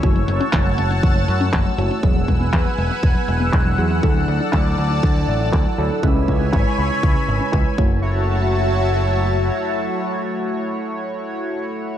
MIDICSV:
0, 0, Header, 1, 6, 480
1, 0, Start_track
1, 0, Key_signature, 3, "minor"
1, 0, Tempo, 500000
1, 31, Time_signature, 4, 2, 24, 8
1, 11500, End_track
2, 0, Start_track
2, 0, Title_t, "Analog synth pad"
2, 0, Program_c, 0, 89
2, 0, Note_on_c, 0, 73, 80
2, 0, Note_on_c, 0, 88, 91
2, 31, Note_on_c, 0, 81, 72
2, 32, Note_on_c, 0, 78, 73
2, 1912, Note_off_c, 0, 73, 0
2, 1932, Note_off_c, 0, 78, 0
2, 1932, Note_off_c, 0, 81, 0
2, 1949, Note_on_c, 0, 78, 74
2, 1949, Note_on_c, 0, 80, 76
2, 1951, Note_on_c, 0, 71, 80
2, 3851, Note_off_c, 0, 80, 0
2, 3852, Note_off_c, 0, 71, 0
2, 3871, Note_on_c, 0, 74, 78
2, 3872, Note_on_c, 0, 81, 72
2, 5751, Note_off_c, 0, 78, 0
2, 5772, Note_off_c, 0, 74, 0
2, 5772, Note_off_c, 0, 81, 0
2, 5792, Note_on_c, 0, 73, 79
2, 5792, Note_on_c, 0, 80, 72
2, 5792, Note_on_c, 0, 83, 75
2, 7433, Note_off_c, 0, 88, 0
2, 7454, Note_off_c, 0, 80, 0
2, 7454, Note_off_c, 0, 83, 0
2, 7455, Note_off_c, 0, 73, 0
2, 7471, Note_on_c, 0, 81, 89
2, 7472, Note_on_c, 0, 54, 79
2, 7472, Note_on_c, 0, 66, 71
2, 7472, Note_on_c, 0, 76, 74
2, 11500, Note_off_c, 0, 54, 0
2, 11500, Note_off_c, 0, 66, 0
2, 11500, Note_off_c, 0, 76, 0
2, 11500, Note_off_c, 0, 81, 0
2, 11500, End_track
3, 0, Start_track
3, 0, Title_t, "Analog polysynth"
3, 0, Program_c, 1, 90
3, 30, Note_on_c, 1, 57, 72
3, 30, Note_on_c, 1, 64, 66
3, 31, Note_on_c, 1, 66, 67
3, 31, Note_on_c, 1, 73, 83
3, 1682, Note_off_c, 1, 57, 0
3, 1682, Note_off_c, 1, 64, 0
3, 1682, Note_off_c, 1, 66, 0
3, 1682, Note_off_c, 1, 73, 0
3, 1710, Note_on_c, 1, 57, 92
3, 1710, Note_on_c, 1, 64, 81
3, 1710, Note_on_c, 1, 66, 82
3, 1710, Note_on_c, 1, 73, 99
3, 1921, Note_off_c, 1, 57, 0
3, 1921, Note_off_c, 1, 73, 0
3, 1922, Note_off_c, 1, 64, 0
3, 1922, Note_off_c, 1, 66, 0
3, 1950, Note_on_c, 1, 54, 82
3, 1950, Note_on_c, 1, 59, 79
3, 1950, Note_on_c, 1, 64, 77
3, 1951, Note_on_c, 1, 68, 89
3, 3602, Note_off_c, 1, 54, 0
3, 3602, Note_off_c, 1, 59, 0
3, 3602, Note_off_c, 1, 64, 0
3, 3602, Note_off_c, 1, 68, 0
3, 3630, Note_on_c, 1, 54, 91
3, 3630, Note_on_c, 1, 59, 86
3, 3630, Note_on_c, 1, 64, 83
3, 3631, Note_on_c, 1, 68, 102
3, 3842, Note_off_c, 1, 54, 0
3, 3842, Note_off_c, 1, 59, 0
3, 3842, Note_off_c, 1, 64, 0
3, 3842, Note_off_c, 1, 68, 0
3, 3870, Note_on_c, 1, 62, 67
3, 3870, Note_on_c, 1, 69, 81
3, 3871, Note_on_c, 1, 54, 71
3, 3871, Note_on_c, 1, 64, 68
3, 5522, Note_off_c, 1, 54, 0
3, 5522, Note_off_c, 1, 62, 0
3, 5522, Note_off_c, 1, 64, 0
3, 5522, Note_off_c, 1, 69, 0
3, 5551, Note_on_c, 1, 54, 87
3, 5551, Note_on_c, 1, 62, 83
3, 5551, Note_on_c, 1, 64, 81
3, 5551, Note_on_c, 1, 69, 101
3, 5762, Note_off_c, 1, 54, 0
3, 5762, Note_off_c, 1, 62, 0
3, 5762, Note_off_c, 1, 64, 0
3, 5762, Note_off_c, 1, 69, 0
3, 5789, Note_on_c, 1, 49, 81
3, 5789, Note_on_c, 1, 56, 76
3, 5789, Note_on_c, 1, 64, 75
3, 5789, Note_on_c, 1, 71, 92
3, 5790, Note_on_c, 1, 61, 76
3, 7441, Note_off_c, 1, 49, 0
3, 7441, Note_off_c, 1, 56, 0
3, 7441, Note_off_c, 1, 61, 0
3, 7441, Note_off_c, 1, 64, 0
3, 7441, Note_off_c, 1, 71, 0
3, 7470, Note_on_c, 1, 57, 78
3, 7470, Note_on_c, 1, 64, 74
3, 7470, Note_on_c, 1, 66, 71
3, 7470, Note_on_c, 1, 73, 87
3, 11500, Note_off_c, 1, 57, 0
3, 11500, Note_off_c, 1, 64, 0
3, 11500, Note_off_c, 1, 66, 0
3, 11500, Note_off_c, 1, 73, 0
3, 11500, End_track
4, 0, Start_track
4, 0, Title_t, "Synth arpeggio sound"
4, 0, Program_c, 2, 84
4, 28, Note_on_c, 2, 52, 79
4, 105, Note_off_c, 2, 52, 0
4, 148, Note_on_c, 2, 54, 72
4, 195, Note_off_c, 2, 54, 0
4, 268, Note_on_c, 2, 57, 74
4, 315, Note_off_c, 2, 57, 0
4, 388, Note_on_c, 2, 61, 99
4, 435, Note_off_c, 2, 61, 0
4, 509, Note_on_c, 2, 52, 82
4, 586, Note_off_c, 2, 52, 0
4, 629, Note_on_c, 2, 54, 73
4, 706, Note_off_c, 2, 54, 0
4, 749, Note_on_c, 2, 57, 75
4, 863, Note_off_c, 2, 57, 0
4, 870, Note_on_c, 2, 61, 73
4, 984, Note_off_c, 2, 61, 0
4, 990, Note_on_c, 2, 52, 78
4, 1066, Note_off_c, 2, 52, 0
4, 1110, Note_on_c, 2, 54, 74
4, 1156, Note_off_c, 2, 54, 0
4, 1229, Note_on_c, 2, 57, 70
4, 1275, Note_off_c, 2, 57, 0
4, 1350, Note_on_c, 2, 61, 97
4, 1396, Note_off_c, 2, 61, 0
4, 1470, Note_on_c, 2, 52, 80
4, 1546, Note_off_c, 2, 52, 0
4, 1590, Note_on_c, 2, 54, 71
4, 1666, Note_off_c, 2, 54, 0
4, 1710, Note_on_c, 2, 57, 71
4, 1824, Note_off_c, 2, 57, 0
4, 1829, Note_on_c, 2, 61, 75
4, 1944, Note_off_c, 2, 61, 0
4, 1951, Note_on_c, 2, 52, 76
4, 2026, Note_off_c, 2, 52, 0
4, 2072, Note_on_c, 2, 54, 74
4, 2117, Note_off_c, 2, 54, 0
4, 2191, Note_on_c, 2, 56, 74
4, 2237, Note_off_c, 2, 56, 0
4, 2310, Note_on_c, 2, 59, 96
4, 2356, Note_off_c, 2, 59, 0
4, 2430, Note_on_c, 2, 52, 80
4, 2506, Note_off_c, 2, 52, 0
4, 2549, Note_on_c, 2, 54, 70
4, 2626, Note_off_c, 2, 54, 0
4, 2671, Note_on_c, 2, 56, 71
4, 2784, Note_off_c, 2, 56, 0
4, 2789, Note_on_c, 2, 59, 73
4, 2904, Note_off_c, 2, 59, 0
4, 2909, Note_on_c, 2, 52, 74
4, 2986, Note_off_c, 2, 52, 0
4, 3029, Note_on_c, 2, 54, 75
4, 3076, Note_off_c, 2, 54, 0
4, 3149, Note_on_c, 2, 56, 71
4, 3196, Note_off_c, 2, 56, 0
4, 3269, Note_on_c, 2, 59, 96
4, 3315, Note_off_c, 2, 59, 0
4, 3390, Note_on_c, 2, 52, 82
4, 3466, Note_off_c, 2, 52, 0
4, 3509, Note_on_c, 2, 54, 71
4, 3586, Note_off_c, 2, 54, 0
4, 3629, Note_on_c, 2, 56, 74
4, 3744, Note_off_c, 2, 56, 0
4, 3750, Note_on_c, 2, 59, 75
4, 3864, Note_off_c, 2, 59, 0
4, 3870, Note_on_c, 2, 52, 79
4, 3946, Note_off_c, 2, 52, 0
4, 3990, Note_on_c, 2, 54, 72
4, 4036, Note_off_c, 2, 54, 0
4, 4111, Note_on_c, 2, 57, 74
4, 4157, Note_off_c, 2, 57, 0
4, 4230, Note_on_c, 2, 62, 95
4, 4276, Note_off_c, 2, 62, 0
4, 4351, Note_on_c, 2, 52, 79
4, 4427, Note_off_c, 2, 52, 0
4, 4469, Note_on_c, 2, 54, 75
4, 4546, Note_off_c, 2, 54, 0
4, 4590, Note_on_c, 2, 57, 71
4, 4704, Note_off_c, 2, 57, 0
4, 4709, Note_on_c, 2, 62, 72
4, 4824, Note_off_c, 2, 62, 0
4, 4829, Note_on_c, 2, 52, 77
4, 4906, Note_off_c, 2, 52, 0
4, 4948, Note_on_c, 2, 54, 71
4, 4995, Note_off_c, 2, 54, 0
4, 5070, Note_on_c, 2, 57, 71
4, 5116, Note_off_c, 2, 57, 0
4, 5189, Note_on_c, 2, 62, 95
4, 5235, Note_off_c, 2, 62, 0
4, 5310, Note_on_c, 2, 52, 77
4, 5386, Note_off_c, 2, 52, 0
4, 5430, Note_on_c, 2, 54, 69
4, 5506, Note_off_c, 2, 54, 0
4, 5551, Note_on_c, 2, 57, 72
4, 5665, Note_off_c, 2, 57, 0
4, 5671, Note_on_c, 2, 62, 75
4, 5785, Note_off_c, 2, 62, 0
4, 5790, Note_on_c, 2, 52, 77
4, 5866, Note_off_c, 2, 52, 0
4, 5912, Note_on_c, 2, 56, 71
4, 5957, Note_off_c, 2, 56, 0
4, 6031, Note_on_c, 2, 59, 73
4, 6076, Note_off_c, 2, 59, 0
4, 6151, Note_on_c, 2, 61, 96
4, 6197, Note_off_c, 2, 61, 0
4, 6272, Note_on_c, 2, 52, 81
4, 6347, Note_off_c, 2, 52, 0
4, 6392, Note_on_c, 2, 56, 73
4, 6467, Note_off_c, 2, 56, 0
4, 6513, Note_on_c, 2, 59, 71
4, 6626, Note_off_c, 2, 59, 0
4, 6631, Note_on_c, 2, 61, 69
4, 6744, Note_off_c, 2, 61, 0
4, 6751, Note_on_c, 2, 52, 76
4, 6826, Note_off_c, 2, 52, 0
4, 6870, Note_on_c, 2, 56, 75
4, 6916, Note_off_c, 2, 56, 0
4, 6991, Note_on_c, 2, 59, 69
4, 7036, Note_off_c, 2, 59, 0
4, 7110, Note_on_c, 2, 61, 97
4, 7156, Note_off_c, 2, 61, 0
4, 7231, Note_on_c, 2, 52, 80
4, 7307, Note_off_c, 2, 52, 0
4, 7350, Note_on_c, 2, 56, 70
4, 7426, Note_off_c, 2, 56, 0
4, 7470, Note_on_c, 2, 52, 87
4, 7917, Note_off_c, 2, 52, 0
4, 11500, End_track
5, 0, Start_track
5, 0, Title_t, "Picked electric bass"
5, 0, Program_c, 3, 34
5, 32, Note_on_c, 3, 30, 93
5, 238, Note_off_c, 3, 30, 0
5, 271, Note_on_c, 3, 30, 86
5, 374, Note_off_c, 3, 30, 0
5, 511, Note_on_c, 3, 30, 80
5, 717, Note_off_c, 3, 30, 0
5, 753, Note_on_c, 3, 30, 79
5, 958, Note_off_c, 3, 30, 0
5, 992, Note_on_c, 3, 30, 81
5, 1198, Note_off_c, 3, 30, 0
5, 1233, Note_on_c, 3, 42, 93
5, 1438, Note_off_c, 3, 42, 0
5, 1471, Note_on_c, 3, 30, 80
5, 1574, Note_off_c, 3, 30, 0
5, 1711, Note_on_c, 3, 30, 87
5, 1814, Note_off_c, 3, 30, 0
5, 1951, Note_on_c, 3, 28, 91
5, 2157, Note_off_c, 3, 28, 0
5, 2192, Note_on_c, 3, 28, 92
5, 2398, Note_off_c, 3, 28, 0
5, 2431, Note_on_c, 3, 40, 82
5, 2534, Note_off_c, 3, 40, 0
5, 2671, Note_on_c, 3, 28, 72
5, 2774, Note_off_c, 3, 28, 0
5, 2911, Note_on_c, 3, 28, 80
5, 3014, Note_off_c, 3, 28, 0
5, 3153, Note_on_c, 3, 28, 80
5, 3358, Note_off_c, 3, 28, 0
5, 3391, Note_on_c, 3, 28, 87
5, 3597, Note_off_c, 3, 28, 0
5, 3632, Note_on_c, 3, 40, 80
5, 3838, Note_off_c, 3, 40, 0
5, 3871, Note_on_c, 3, 38, 87
5, 4077, Note_off_c, 3, 38, 0
5, 4112, Note_on_c, 3, 38, 90
5, 4214, Note_off_c, 3, 38, 0
5, 4351, Note_on_c, 3, 38, 81
5, 4557, Note_off_c, 3, 38, 0
5, 4592, Note_on_c, 3, 38, 77
5, 4798, Note_off_c, 3, 38, 0
5, 4831, Note_on_c, 3, 38, 80
5, 5037, Note_off_c, 3, 38, 0
5, 5071, Note_on_c, 3, 33, 94
5, 5277, Note_off_c, 3, 33, 0
5, 5311, Note_on_c, 3, 38, 76
5, 5414, Note_off_c, 3, 38, 0
5, 5551, Note_on_c, 3, 38, 85
5, 5654, Note_off_c, 3, 38, 0
5, 5791, Note_on_c, 3, 37, 93
5, 5997, Note_off_c, 3, 37, 0
5, 6031, Note_on_c, 3, 37, 92
5, 6237, Note_off_c, 3, 37, 0
5, 6271, Note_on_c, 3, 32, 81
5, 6374, Note_off_c, 3, 32, 0
5, 6512, Note_on_c, 3, 37, 70
5, 6615, Note_off_c, 3, 37, 0
5, 6751, Note_on_c, 3, 37, 75
5, 6854, Note_off_c, 3, 37, 0
5, 6991, Note_on_c, 3, 32, 74
5, 7094, Note_off_c, 3, 32, 0
5, 7231, Note_on_c, 3, 37, 87
5, 7334, Note_off_c, 3, 37, 0
5, 7472, Note_on_c, 3, 30, 85
5, 9113, Note_off_c, 3, 30, 0
5, 11500, End_track
6, 0, Start_track
6, 0, Title_t, "Drums"
6, 31, Note_on_c, 9, 36, 110
6, 31, Note_on_c, 9, 42, 48
6, 127, Note_off_c, 9, 36, 0
6, 127, Note_off_c, 9, 42, 0
6, 151, Note_on_c, 9, 42, 23
6, 247, Note_off_c, 9, 42, 0
6, 270, Note_on_c, 9, 42, 83
6, 366, Note_off_c, 9, 42, 0
6, 390, Note_on_c, 9, 42, 47
6, 486, Note_off_c, 9, 42, 0
6, 510, Note_on_c, 9, 39, 109
6, 510, Note_on_c, 9, 42, 46
6, 511, Note_on_c, 9, 36, 116
6, 606, Note_off_c, 9, 39, 0
6, 606, Note_off_c, 9, 42, 0
6, 607, Note_off_c, 9, 36, 0
6, 630, Note_on_c, 9, 42, 23
6, 726, Note_off_c, 9, 42, 0
6, 750, Note_on_c, 9, 42, 85
6, 846, Note_off_c, 9, 42, 0
6, 871, Note_on_c, 9, 42, 45
6, 967, Note_off_c, 9, 42, 0
6, 991, Note_on_c, 9, 36, 114
6, 991, Note_on_c, 9, 42, 47
6, 1087, Note_off_c, 9, 36, 0
6, 1087, Note_off_c, 9, 42, 0
6, 1111, Note_on_c, 9, 42, 23
6, 1207, Note_off_c, 9, 42, 0
6, 1232, Note_on_c, 9, 42, 79
6, 1328, Note_off_c, 9, 42, 0
6, 1353, Note_on_c, 9, 42, 46
6, 1449, Note_off_c, 9, 42, 0
6, 1471, Note_on_c, 9, 36, 110
6, 1472, Note_on_c, 9, 39, 108
6, 1567, Note_off_c, 9, 36, 0
6, 1568, Note_off_c, 9, 39, 0
6, 1593, Note_on_c, 9, 42, 23
6, 1689, Note_off_c, 9, 42, 0
6, 1713, Note_on_c, 9, 42, 83
6, 1809, Note_off_c, 9, 42, 0
6, 1833, Note_on_c, 9, 42, 48
6, 1929, Note_off_c, 9, 42, 0
6, 1951, Note_on_c, 9, 36, 104
6, 1953, Note_on_c, 9, 42, 48
6, 2047, Note_off_c, 9, 36, 0
6, 2049, Note_off_c, 9, 42, 0
6, 2073, Note_on_c, 9, 42, 24
6, 2169, Note_off_c, 9, 42, 0
6, 2191, Note_on_c, 9, 36, 54
6, 2193, Note_on_c, 9, 42, 85
6, 2287, Note_off_c, 9, 36, 0
6, 2289, Note_off_c, 9, 42, 0
6, 2313, Note_on_c, 9, 42, 47
6, 2409, Note_off_c, 9, 42, 0
6, 2431, Note_on_c, 9, 36, 108
6, 2434, Note_on_c, 9, 39, 104
6, 2527, Note_off_c, 9, 36, 0
6, 2530, Note_off_c, 9, 39, 0
6, 2555, Note_on_c, 9, 42, 24
6, 2651, Note_off_c, 9, 42, 0
6, 2673, Note_on_c, 9, 42, 84
6, 2769, Note_off_c, 9, 42, 0
6, 2792, Note_on_c, 9, 42, 47
6, 2888, Note_off_c, 9, 42, 0
6, 2911, Note_on_c, 9, 36, 109
6, 3007, Note_off_c, 9, 36, 0
6, 3032, Note_on_c, 9, 42, 24
6, 3128, Note_off_c, 9, 42, 0
6, 3152, Note_on_c, 9, 42, 84
6, 3248, Note_off_c, 9, 42, 0
6, 3272, Note_on_c, 9, 42, 47
6, 3368, Note_off_c, 9, 42, 0
6, 3391, Note_on_c, 9, 36, 105
6, 3391, Note_on_c, 9, 39, 107
6, 3487, Note_off_c, 9, 36, 0
6, 3487, Note_off_c, 9, 39, 0
6, 3510, Note_on_c, 9, 42, 24
6, 3606, Note_off_c, 9, 42, 0
6, 3629, Note_on_c, 9, 42, 85
6, 3725, Note_off_c, 9, 42, 0
6, 3750, Note_on_c, 9, 42, 49
6, 3846, Note_off_c, 9, 42, 0
6, 3871, Note_on_c, 9, 36, 102
6, 3967, Note_off_c, 9, 36, 0
6, 3989, Note_on_c, 9, 42, 25
6, 4085, Note_off_c, 9, 42, 0
6, 4109, Note_on_c, 9, 42, 85
6, 4205, Note_off_c, 9, 42, 0
6, 4229, Note_on_c, 9, 42, 49
6, 4325, Note_off_c, 9, 42, 0
6, 4348, Note_on_c, 9, 39, 100
6, 4351, Note_on_c, 9, 36, 102
6, 4444, Note_off_c, 9, 39, 0
6, 4447, Note_off_c, 9, 36, 0
6, 4590, Note_on_c, 9, 42, 88
6, 4686, Note_off_c, 9, 42, 0
6, 4710, Note_on_c, 9, 42, 49
6, 4806, Note_off_c, 9, 42, 0
6, 4831, Note_on_c, 9, 36, 104
6, 4927, Note_off_c, 9, 36, 0
6, 5071, Note_on_c, 9, 42, 85
6, 5167, Note_off_c, 9, 42, 0
6, 5191, Note_on_c, 9, 42, 48
6, 5287, Note_off_c, 9, 42, 0
6, 5311, Note_on_c, 9, 36, 101
6, 5311, Note_on_c, 9, 39, 103
6, 5407, Note_off_c, 9, 36, 0
6, 5407, Note_off_c, 9, 39, 0
6, 5431, Note_on_c, 9, 42, 25
6, 5527, Note_off_c, 9, 42, 0
6, 5552, Note_on_c, 9, 42, 86
6, 5648, Note_off_c, 9, 42, 0
6, 5672, Note_on_c, 9, 42, 49
6, 5768, Note_off_c, 9, 42, 0
6, 5791, Note_on_c, 9, 36, 102
6, 5887, Note_off_c, 9, 36, 0
6, 6031, Note_on_c, 9, 36, 52
6, 6033, Note_on_c, 9, 42, 87
6, 6127, Note_off_c, 9, 36, 0
6, 6129, Note_off_c, 9, 42, 0
6, 6153, Note_on_c, 9, 42, 48
6, 6249, Note_off_c, 9, 42, 0
6, 6271, Note_on_c, 9, 36, 107
6, 6273, Note_on_c, 9, 39, 100
6, 6367, Note_off_c, 9, 36, 0
6, 6369, Note_off_c, 9, 39, 0
6, 6512, Note_on_c, 9, 42, 89
6, 6608, Note_off_c, 9, 42, 0
6, 6633, Note_on_c, 9, 42, 48
6, 6729, Note_off_c, 9, 42, 0
6, 6752, Note_on_c, 9, 36, 102
6, 6848, Note_off_c, 9, 36, 0
6, 6872, Note_on_c, 9, 42, 25
6, 6968, Note_off_c, 9, 42, 0
6, 6991, Note_on_c, 9, 42, 88
6, 7087, Note_off_c, 9, 42, 0
6, 7111, Note_on_c, 9, 42, 49
6, 7207, Note_off_c, 9, 42, 0
6, 7230, Note_on_c, 9, 39, 103
6, 7231, Note_on_c, 9, 36, 101
6, 7326, Note_off_c, 9, 39, 0
6, 7327, Note_off_c, 9, 36, 0
6, 7471, Note_on_c, 9, 36, 99
6, 7567, Note_off_c, 9, 36, 0
6, 11500, End_track
0, 0, End_of_file